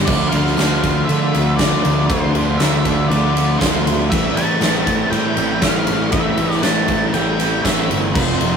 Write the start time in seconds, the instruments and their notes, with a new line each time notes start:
0.05 picked electric bass D2, overdriven electric guitar D3 A3 D4, clean electric guitar F3, lead electric guitar D5, kick, crash
0.09 overdriven electric guitar F4
0.29 picked electric bass D2, overdriven electric guitar F4, lead electric guitar F5, ride
0.34 overdriven electric guitar A3 D4
0.46 snare
0.57 picked electric bass D2, overdriven electric guitar D3 A3 D4 F4, clean electric guitar A4, snare, ride, tambourine
0.83 clean electric guitar D4, overdriven electric guitar D4 F4, kick, ride
0.87 overdriven electric guitar A3
1.05 overdriven electric guitar D3, picked electric bass D3, clean electric guitar F3, lead electric guitar E5
1.09 overdriven electric guitar A3 D4 F4, ride
1.33 picked electric bass D2, overdriven electric guitar A3 D4 F4, clean electric guitar C4, ride
1.56 picked electric bass D2, overdriven electric guitar D3 A3, clean electric guitar F3, lead electric guitar D5, kick, snare, ride, tambourine
1.61 overdriven electric guitar D4 F4
1.83 picked electric bass D2, distorted electric guitar A3 D4, clean electric guitar D4, ride
2.07 picked electric bass D2, overdriven electric guitar D3 A3, clean electric guitar F3, lead electric guitar C5, kick, ride
2.11 overdriven electric guitar D4 F4
2.33 picked electric bass D2, overdriven electric guitar A3 D4 F4, ride
2.58 picked electric bass D2, overdriven electric guitar D3 A3 D4, clean electric guitar A4, lead electric guitar E5, snare, ride, tambourine
2.63 overdriven electric guitar F4
2.84 picked electric bass D2, overdriven electric guitar A3 D4 F4, clean electric guitar D4, kick, ride
3.08 picked electric bass D2, overdriven electric guitar D3 A3 D4, clean electric guitar F3, lead electric guitar D5, ride
3.13 overdriven electric guitar F4
3.34 overdriven electric guitar A3 D4 F4, clean electric guitar C4, ride
3.58 picked electric bass D2, overdriven electric guitar D3 A3 D4 F4, clean electric guitar F3, lead electric guitar C5, kick, snare, ride, tambourine
3.85 picked electric bass D2, distorted electric guitar A3 D4, clean electric guitar D4, ride
4.08 picked electric bass A1, overdriven electric guitar A2 E3 A3 C4 E4, clean electric guitar G3, lead electric guitar E5, kick, ride
4.34 picked electric bass A1, overdriven electric guitar A3 C4 E4, lead electric guitar A5, ride
4.39 distorted electric guitar E3
4.58 picked electric bass A1, overdriven electric guitar A2 E3 A3 C4, clean electric guitar A4, tambourine
4.62 distorted electric guitar A3, overdriven electric guitar E4, snare, ride
4.84 overdriven electric guitar A3 C4 E4, kick, ride
4.89 distorted electric guitar E3
5.10 picked electric bass A2, overdriven electric guitar A2 E3 A3 C4 E4, clean electric guitar G3, lead electric guitar G5, ride
5.36 picked electric bass A1, overdriven electric guitar A3 C4 E4, clean electric guitar C4, ride
5.61 picked electric bass A1, distorted electric guitar A2, overdriven electric guitar E3 A3 C4 E4, clean electric guitar G3, lead electric guitar F5, kick, snare, ride, tambourine
5.87 picked electric bass A1, distorted electric guitar E3 A3, clean electric guitar E4, ride
6.10 picked electric bass A1, overdriven electric guitar A2 E3 A3 C4 E4, clean electric guitar G3, lead electric guitar E5, kick, ride
6.37 picked electric bass A1, distorted electric guitar E3, overdriven electric guitar A3 C4 E4, ride
6.51 lead electric guitar D5, snare
6.61 picked electric bass A1, overdriven electric guitar A2 E3 A3 C4 E4, clean electric guitar A4, lead electric guitar A5, snare, ride, tambourine
6.87 picked electric bass A1, overdriven electric guitar A3 C4 E4, clean electric guitar E4, kick, ride
6.92 distorted electric guitar E3
7.13 picked electric bass A1, overdriven electric guitar A2 E3 A3 C4 E4, clean electric guitar G3, lead electric guitar G5, ride
7.38 overdriven electric guitar A3 C4 E4, clean electric guitar C4, ride
7.61 picked electric bass A1, distorted electric guitar A2, overdriven electric guitar E3 A3 C4 E4, clean electric guitar G3, lead electric guitar E5, kick, tambourine
7.65 snare, ride
7.88 picked electric bass G1, distorted electric guitar E3 A3, clean electric guitar E4, ride
8.12 overdriven electric guitar F2 C3 F3 A3 C4 F4, clean electric guitar C4, lead electric guitar C5, kick, crash
8.16 picked electric bass F1
8.38 picked electric bass F1, distorted electric guitar C3, overdriven electric guitar F3 A3 C4 F4, ride